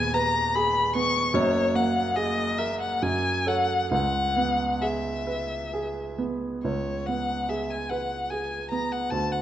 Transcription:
0.00 1.32 D#1 medium
0.00 1.32 D#2 medium
0.00 0.95 B3 medium
0.00 0.39 G#4 medium
0.00 0.15 G#5 loud
0.14 0.79 B4 medium
0.14 0.56 A#5 loud
0.55 1.20 G#4 medium
0.55 0.95 B5 loud
0.95 1.35 B3 medium
0.95 1.36 C#6 loud
1.33 2.97 F#1 medium
1.33 2.98 F#2 medium
1.33 1.77 C#5 loud
1.75 2.42 A#3 medium
1.75 2.17 F#5 medium
2.16 2.84 G#4 medium
2.16 2.59 D#5 medium
2.58 3.02 A#4 medium
2.58 2.80 E5 medium
2.80 3.04 F#5 medium
3.02 3.89 F#2 medium
3.02 3.49 G#5 loud
3.46 3.87 A4 medium
3.46 3.87 C#5 medium
3.46 3.91 F#5 loud
3.91 6.59 C#2 medium
3.91 4.83 F#5 loud
4.37 5.09 B3 medium
4.81 5.54 G#4 soft
4.81 6.19 E5 medium
5.27 6.00 B4 medium
5.74 6.46 G#4 medium
6.18 6.63 B3 medium
6.63 9.08 C#2 medium
6.63 7.08 C#5 medium
7.06 7.74 B3 soft
7.06 7.50 F#5 medium
7.49 8.14 G#4 soft
7.49 7.72 E5 medium
7.70 7.91 G#5 medium
7.89 8.55 B4 soft
7.89 8.32 F#5 medium
8.30 8.95 G#4 soft
8.30 8.70 G#5 medium
8.71 9.12 B3 medium
8.71 8.94 A#5 medium
8.92 9.12 F#5 medium
9.10 9.42 D2 medium
9.10 9.33 A5 loud
9.32 9.42 F#5 medium

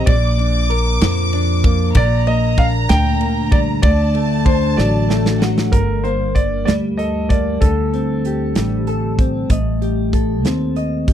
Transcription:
0.00 0.13 G3 medium
0.00 0.14 C4 medium
0.00 0.13 G4 medium
0.00 0.70 A#4 medium
0.06 0.97 A#1 loud
0.06 1.95 A#2 medium
0.06 0.73 D5 medium
0.06 1.95 D6 loud
0.06 kick loud
0.06 ride medium
0.38 1.33 D4 medium
0.38 ride soft
0.70 2.01 A#4 medium
0.70 ride soft
1.01 1.91 F2 loud
1.01 2.02 F3 medium
1.01 snare loud
1.01 ride medium
1.33 2.58 D4 medium
1.33 ride medium
1.64 2.01 A#3 medium
1.64 kick loud
1.64 ride soft
1.95 2.85 A#1 loud
1.95 3.84 A#2 medium
1.95 2.25 D5 loud
1.95 3.84 A#5 loud
1.95 kick loud
1.95 ride medium
2.27 3.19 A#3 medium
2.27 2.59 D#5 loud
2.27 ride soft
2.58 4.45 D4 medium
2.58 2.65 F5 loud
2.58 kick medium
2.58 ride soft
2.89 3.79 D2 loud
2.89 3.82 D3 medium
2.89 3.54 G5 loud
2.89 snare loud
2.89 ride medium
3.21 3.89 A#3 medium
3.21 ride medium
3.51 3.89 G3 medium
3.51 3.59 D5 medium
3.51 kick loud
3.51 ride soft
3.82 4.74 D2 loud
3.82 7.32 D3 medium
3.82 4.48 D5 loud
3.82 5.41 A5 loud
3.82 kick loud
3.82 ride medium
4.14 5.08 A3 medium
4.14 ride soft
4.46 7.96 D4 medium
4.46 4.75 C5 medium
4.46 kick loud
4.46 ride soft
4.77 5.69 A1 loud
4.77 5.39 F#3 medium
4.77 5.45 D5 medium
4.77 snare medium
5.09 6.04 A3 medium
5.09 snare medium
5.26 snare medium
5.40 5.79 F#3 medium
5.40 5.72 F#5 medium
5.40 snare loud
5.58 snare loud
5.72 6.63 G1 medium
5.72 7.61 G2 medium
5.72 6.05 A#4 medium
5.72 kick medium
5.72 closed hi-hat medium
6.04 7.29 A#3 soft
6.04 6.36 C5 medium
6.04 closed hi-hat soft
6.35 6.64 D5 medium
6.35 kick medium
6.35 closed hi-hat soft
6.65 7.58 D2 medium
6.65 8.55 G3 medium
6.65 6.73 D5 medium
6.65 snare loud
6.65 closed hi-hat medium
6.97 7.63 A4 medium
6.97 7.31 D#5 medium
6.97 closed hi-hat medium
7.29 7.68 A#3 soft
7.29 7.62 D5 medium
7.29 kick medium
7.29 closed hi-hat soft
7.61 8.52 D2 loud
7.61 9.50 D3 medium
7.61 9.14 A4 medium
7.61 8.87 A4 soft
7.61 kick medium
7.61 closed hi-hat medium
7.93 9.18 C4 soft
7.93 closed hi-hat soft
8.25 9.82 G4 soft
8.25 closed hi-hat soft
8.55 9.46 A1 medium
8.55 10.16 G3 medium
8.55 snare medium
8.55 closed hi-hat medium
8.87 9.50 A4 medium
8.87 closed hi-hat soft
9.19 9.56 C4 medium
9.19 kick medium
9.19 closed hi-hat soft
9.50 10.44 A1 medium
9.50 11.13 A3 medium
9.50 10.75 D#5 soft
9.50 kick loud
9.50 closed hi-hat medium
9.82 11.07 G4 medium
9.82 closed hi-hat soft
10.13 11.13 A4 medium
10.13 kick medium
10.13 closed hi-hat soft
10.44 11.13 D#2 medium
10.44 11.13 C4 medium
10.44 snare medium
10.44 closed hi-hat medium
10.76 11.13 D#5 soft
10.76 closed hi-hat soft
11.08 11.13 G4 soft
11.08 kick medium
11.08 closed hi-hat soft

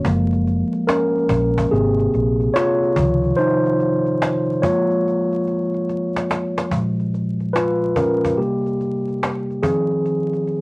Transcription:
0.05 0.62 F#1 loud
0.05 0.65 F3 medium
0.05 0.65 G#3 medium
0.05 0.66 A#3 medium
0.05 cajon bass loud
0.33 cajon slap soft
0.47 cajon slap soft
0.73 cajon slap soft
0.87 1.68 C#4 medium
0.87 1.67 A#4 medium
0.87 cajon slap loud
1.18 cajon slap soft
1.29 1.64 A#1 medium
1.29 cajon bass medium
1.58 cajon bass medium
1.71 2.06 G#1 loud
1.71 2.32 C3 medium
1.71 2.32 A#3 medium
1.71 2.51 C4 medium
1.71 2.32 G4 medium
1.71 2.57 G#4 medium
1.71 cajon slap soft
1.99 cajon slap soft
2.14 2.48 A#1 loud
2.14 cajon slap soft
2.41 cajon slap soft
2.54 3.35 F4 medium
2.54 3.40 C#5 loud
2.54 cajon slap loud
2.54 cajon slap medium
2.83 cajon slap soft
2.96 3.31 C#2 loud
2.96 4.18 C3 medium
2.96 4.17 D#3 medium
2.96 4.18 F3 medium
2.96 cajon bass loud
3.24 cajon slap soft
3.37 4.59 D#4 medium
3.37 4.66 C5 loud
3.37 cajon slap soft
3.66 cajon slap soft
3.80 cajon slap soft
4.06 cajon slap soft
4.22 cajon slap loud
4.22 cajon slap medium
4.51 cajon slap soft
4.62 5.84 F3 medium
4.62 5.84 G#3 soft
4.62 5.85 A#3 medium
4.62 6.26 F4 medium
4.62 6.25 C#5 medium
4.62 cajon bass loud
4.90 cajon slap soft
5.08 cajon slap soft
5.33 cajon slap soft
5.47 cajon slap soft
5.74 cajon slap soft
5.89 cajon slap medium
6.16 cajon slap medium
6.31 cajon slap loud
6.58 cajon slap medium
6.71 7.93 A#2 medium
6.71 7.92 F3 soft
6.71 7.92 G#3 soft
6.71 cajon bass medium
7.00 cajon slap soft
7.14 cajon slap soft
7.40 cajon slap soft
7.53 7.94 F4 medium
7.53 7.93 B4 medium
7.53 cajon slap loud
7.53 cajon slap medium
7.85 cajon slap soft
7.96 8.36 C#4 medium
7.96 8.39 A#4 medium
7.96 cajon bass medium
8.25 cajon bass medium
8.37 8.98 C3 soft
8.37 8.99 G3 soft
8.37 9.60 A#3 medium
8.37 9.67 G4 medium
8.42 cajon slap soft
8.66 cajon slap soft
8.81 cajon slap soft
9.08 cajon slap soft
9.23 cajon slap loud
9.23 cajon slap medium
9.50 cajon slap soft
9.62 10.61 D#3 medium
9.62 10.61 F3 soft
9.62 10.61 C4 medium
9.62 10.61 G#4 medium
9.62 cajon bass medium
9.91 cajon slap soft
10.06 cajon slap soft
10.33 cajon slap soft
10.47 cajon slap soft

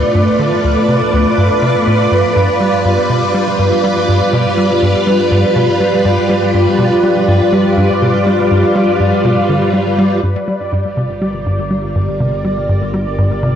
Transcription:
0.00 2.36 A3 medium
0.00 13.55 F4 medium
0.00 10.23 B4 medium
0.00 10.24 B4 medium
0.00 13.55 D5 medium
0.15 0.28 G2 medium
0.39 0.53 D3 medium
0.64 0.77 D2 medium
0.89 1.02 C3 medium
1.13 1.27 D2 medium
1.38 1.51 G2 medium
1.62 1.76 C3 medium
1.87 2.07 A2 medium
2.12 2.25 G2 medium
2.36 2.50 G2 medium
2.36 13.55 G3 medium
2.61 2.74 G3 medium
2.85 2.99 G2 medium
3.10 3.23 B2 medium
3.35 3.48 G3 medium
3.59 3.72 G2 medium
3.84 3.97 G3 medium
4.09 4.22 G2 medium
4.33 4.46 B2 medium
4.57 4.71 G3 medium
4.82 4.96 G2 medium
5.07 5.20 G3 medium
5.31 5.45 G2 medium
5.56 5.69 B2 medium
5.80 5.94 G3 medium
6.05 6.18 G2 medium
6.30 6.43 G3 medium
6.54 6.68 G2 medium
6.79 6.92 B2 medium
7.03 7.17 G3 medium
7.28 7.41 G2 medium
7.52 7.66 G3 medium
7.77 7.91 G2 medium
8.02 8.15 B2 medium
8.26 8.40 G3 medium
8.51 8.64 G2 medium
8.76 8.89 G3 medium
9.00 9.13 G2 medium
9.25 9.38 B2 medium
9.49 9.63 D3 medium
9.74 9.87 G3 medium
9.99 10.19 G3 loud
10.23 13.55 G1 medium
10.23 10.37 G2 medium
10.23 13.55 D5 medium
10.48 10.61 G3 medium
10.72 10.86 G2 medium
10.97 11.10 C3 medium
10.97 13.55 A#4 medium
11.22 11.35 G3 medium
11.46 11.60 G2 medium
11.71 11.84 G3 medium
11.95 12.09 G2 medium
12.20 12.33 C3 medium
12.44 12.58 G3 medium
12.69 12.82 G2 medium
12.94 13.07 G3 medium
13.18 13.32 G2 medium
13.43 13.55 C3 medium

